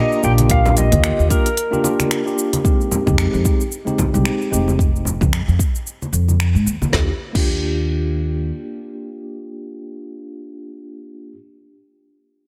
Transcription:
0.00 0.20 A#3 loud
0.00 0.20 D4 medium
0.00 0.21 F4 medium
0.00 0.21 G4 loud
0.00 0.25 D#5 loud
0.12 shaker soft
0.23 0.87 A#1 medium
0.23 0.47 A#3 loud
0.23 0.47 D4 medium
0.23 0.48 F4 medium
0.23 0.48 G4 loud
0.23 0.32 G5 loud
0.23 shaker medium
0.38 closed hi-hat medium
0.38 high conga medium
0.38 shaker soft
0.49 0.88 A#3 medium
0.49 0.88 D4 medium
0.49 0.89 F4 medium
0.49 0.89 G4 medium
0.49 0.76 F5 loud
0.49 kick loud
0.49 closed hi-hat medium
0.49 shaker soft
0.66 muted conga medium
0.66 low conga medium
0.66 shaker soft
0.77 1.27 D#5 loud
0.77 closed hi-hat soft
0.77 low conga medium
0.77 shaker medium
0.91 1.13 D#2 loud
0.91 1.27 D3 medium
0.91 1.27 A#3 medium
0.91 1.28 F4 medium
0.91 1.28 G4 loud
0.91 kick loud
0.91 closed hi-hat medium
0.91 low conga medium
0.91 shaker soft
1.04 finger snap loud
1.04 closed hi-hat medium
1.04 shaker soft
1.19 1.28 D#2 loud
1.19 shaker soft
1.29 1.46 A#3 medium
1.29 1.47 D4 medium
1.29 1.47 F4 medium
1.29 1.47 G4 medium
1.29 2.34 A#4 medium
1.29 kick loud
1.29 closed hi-hat soft
1.29 shaker medium
1.46 closed hi-hat soft
1.46 shaker soft
1.57 closed hi-hat medium
1.57 shaker soft
1.71 1.81 A#3 loud
1.71 1.81 D4 medium
1.71 1.82 F4 medium
1.71 1.82 G4 loud
1.71 high conga medium
1.71 shaker soft
1.83 2.22 A#3 medium
1.83 2.22 D4 medium
1.83 2.23 F4 medium
1.83 2.23 G4 medium
1.83 muted conga medium
1.83 shaker medium
2.00 finger snap soft
2.00 closed hi-hat soft
2.00 high conga medium
2.00 shaker soft
2.11 finger snap loud
2.11 closed hi-hat medium
2.11 shaker soft
2.25 2.61 A#3 medium
2.25 2.61 D4 medium
2.25 2.62 F4 medium
2.25 2.62 G4 medium
2.25 shaker soft
2.39 shaker medium
2.53 closed hi-hat soft
2.53 high conga medium
2.53 shaker soft
2.64 3.03 G#3 medium
2.64 3.03 C4 medium
2.64 3.03 D#4 medium
2.64 3.03 G4 medium
2.64 kick loud
2.64 shaker soft
2.81 shaker soft
2.91 low conga medium
2.91 shaker medium
3.06 3.27 F2 medium
3.06 3.42 G#3 medium
3.06 3.42 C4 medium
3.06 3.42 D#4 medium
3.06 3.43 G4 medium
3.06 kick medium
3.06 low conga medium
3.06 shaker soft
3.18 finger snap medium
3.18 shaker soft
3.33 3.42 F2 medium
3.33 shaker soft
3.44 3.61 G#3 medium
3.44 3.62 C4 medium
3.44 3.62 D#4 medium
3.44 3.62 G4 medium
3.44 kick loud
3.44 shaker medium
3.61 shaker soft
3.72 shaker soft
3.85 4.09 G#3 medium
3.85 4.10 C4 medium
3.85 4.10 D#4 medium
3.85 4.10 G4 medium
3.85 high conga medium
3.85 shaker soft
3.98 kick medium
3.98 low conga medium
3.98 shaker medium
4.13 4.23 C2 loud
4.13 4.49 G#3 medium
4.13 4.49 C4 medium
4.13 4.49 D#4 medium
4.13 4.50 G4 loud
4.13 high conga medium
4.13 shaker soft
4.25 finger snap medium
4.25 shaker soft
4.42 shaker soft
4.51 5.16 F1 medium
4.51 4.75 G#3 medium
4.51 4.76 C4 medium
4.51 4.76 D#4 medium
4.51 4.76 G4 medium
4.51 shaker medium
4.68 high conga medium
4.68 shaker soft
4.79 kick loud
4.79 shaker soft
4.96 shaker soft
5.05 low conga medium
5.05 shaker medium
5.21 5.42 F2 medium
5.21 kick medium
5.21 low conga medium
5.21 shaker soft
5.33 finger snap medium
5.33 shaker soft
5.48 5.57 F2 medium
5.48 shaker soft
5.59 kick medium
5.59 shaker medium
5.75 shaker soft
5.87 shaker soft
6.02 high conga medium
6.02 shaker soft
6.13 6.54 F2 loud
6.13 shaker medium
6.28 high conga medium
6.28 shaker soft
6.40 finger snap medium
6.40 shaker soft
6.55 6.64 G#2 medium
6.55 shaker soft
6.66 6.78 D#2 medium
6.66 shaker medium
6.82 6.91 D#2 medium
6.82 high conga medium
6.82 shaker soft
6.90 7.09 D#2 medium
6.90 7.08 A#3 medium
6.90 7.09 D4 medium
6.90 7.10 F4 medium
6.90 kick medium
6.90 snare medium
6.95 7.11 G4 medium
7.33 8.50 D#2 medium
7.33 11.32 A#3 medium
7.33 11.34 D4 medium
7.33 kick medium
7.33 crash medium
7.37 11.36 F4 medium
7.37 11.38 G4 medium

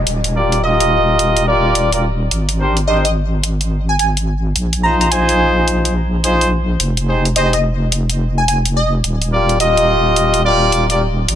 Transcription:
0.00 downlifter medium
0.07 2.29 D#1 medium
0.07 closed hi-hat medium
0.24 closed hi-hat medium
0.35 0.60 F4 medium
0.35 0.61 G4 medium
0.35 0.61 A#4 medium
0.35 0.60 D5 medium
0.52 closed hi-hat soft
0.63 1.45 F4 medium
0.63 1.45 G4 medium
0.63 1.45 A#4 medium
0.63 1.45 D#5 loud
0.63 1.43 D#5 medium
0.80 closed hi-hat medium
1.19 closed hi-hat medium
1.37 closed hi-hat medium
1.47 1.88 F4 medium
1.47 1.88 G4 medium
1.47 1.88 A#4 medium
1.47 1.88 D5 loud
1.75 closed hi-hat medium
1.92 2.05 F4 medium
1.92 2.05 G4 medium
1.92 2.05 A#4 medium
1.92 2.05 D5 medium
1.92 closed hi-hat medium
2.31 4.53 G#1 medium
2.31 closed hi-hat medium
2.49 closed hi-hat medium
2.59 2.78 D4 medium
2.59 2.78 G4 medium
2.59 2.78 A#4 medium
2.59 2.78 C5 medium
2.77 closed hi-hat soft
2.87 3.06 D4 medium
2.87 3.06 G4 medium
2.87 3.06 A#4 medium
2.87 3.06 C5 medium
2.87 2.98 D#5 medium
3.05 3.11 D#5 medium
3.05 closed hi-hat medium
3.44 closed hi-hat medium
3.61 closed hi-hat medium
3.89 3.96 G#5 medium
3.99 4.11 G#5 medium
3.99 closed hi-hat medium
4.17 closed hi-hat medium
4.56 6.78 A#1 medium
4.56 closed hi-hat medium
4.73 closed hi-hat medium
4.83 5.09 D#4 medium
4.83 5.09 F4 medium
4.83 5.09 G#4 medium
4.83 5.09 C5 medium
4.83 4.95 A#5 medium
5.01 5.08 A#5 medium
5.01 closed hi-hat soft
5.11 5.93 D#4 medium
5.11 5.93 F4 medium
5.11 5.93 G#4 medium
5.11 5.93 C5 loud
5.11 5.68 G#5 medium
5.11 closed hi-hat medium
5.29 closed hi-hat soft
5.68 closed hi-hat medium
5.85 closed hi-hat soft
6.24 6.49 D#4 medium
6.24 6.49 F4 medium
6.24 6.49 G#4 medium
6.24 6.49 C5 loud
6.24 closed hi-hat medium
6.41 closed hi-hat medium
6.80 9.02 F1 medium
6.80 closed hi-hat medium
6.97 closed hi-hat soft
7.08 7.26 D#4 medium
7.08 7.26 G4 medium
7.08 7.26 G#4 medium
7.08 7.26 C5 medium
7.25 closed hi-hat soft
7.36 7.54 D#4 medium
7.36 7.54 G4 medium
7.36 7.54 G#4 medium
7.36 7.54 C5 medium
7.36 7.47 D#5 medium
7.36 closed hi-hat medium
7.53 7.60 D#5 medium
7.53 closed hi-hat soft
7.92 closed hi-hat medium
8.10 closed hi-hat soft
8.38 8.44 G#5 medium
8.48 8.59 G#5 medium
8.48 closed hi-hat medium
8.65 closed hi-hat medium
8.77 8.93 D#5 medium
9.04 11.26 D#1 medium
9.04 closed hi-hat medium
9.22 closed hi-hat soft
9.32 9.58 F4 medium
9.32 9.58 G4 medium
9.32 9.58 A#4 medium
9.32 9.58 D5 medium
9.49 closed hi-hat soft
9.60 10.42 F4 medium
9.60 10.42 G4 medium
9.60 10.42 A#4 medium
9.60 10.42 D#5 loud
9.60 10.40 D#5 loud
9.60 closed hi-hat medium
9.77 closed hi-hat soft
10.16 closed hi-hat medium
10.34 closed hi-hat soft
10.44 10.86 F4 loud
10.44 10.86 G4 medium
10.44 10.86 A#4 medium
10.44 10.86 D5 loud
10.72 closed hi-hat medium
10.90 11.02 F4 medium
10.90 11.02 G4 medium
10.90 11.02 A#4 medium
10.90 11.02 D5 medium
10.90 closed hi-hat soft
11.28 11.35 G#1 medium
11.28 closed hi-hat medium

